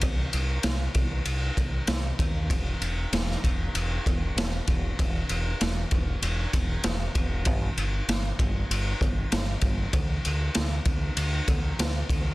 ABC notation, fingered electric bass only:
X:1
M:4/4
L:1/8
Q:1/4=97
K:Clyd
V:1 name="Fingered electric bass" clef=bass
C,, C,, C,, C,, C,, C,, C,, _E,, | E,,, E,,, E,,, E,,, E,,, E,,, E,,, E,,, | E,,, E,,, E,,, E,,, E,,, E,,, E,,, E,,, | G,,, G,,, G,,, G,,, G,,, G,,, G,,, G,,, |
D,, D,, D,, D,, D,, D,, D,, D,, |]